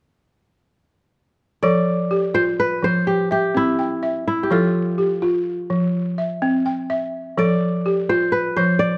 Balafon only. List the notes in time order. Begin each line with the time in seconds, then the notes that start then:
1.63 F3 A4
2.11 G4
2.34 F4
2.83 F3
3.31 E5
3.55 C4
3.79 G5
4.03 E5
4.50 F3 A4
4.98 G4
5.22 F4
5.70 F3
6.18 E5
6.42 C4
6.66 G5
6.90 E5
7.38 F3 A4
7.86 G4
8.10 F4
8.57 F3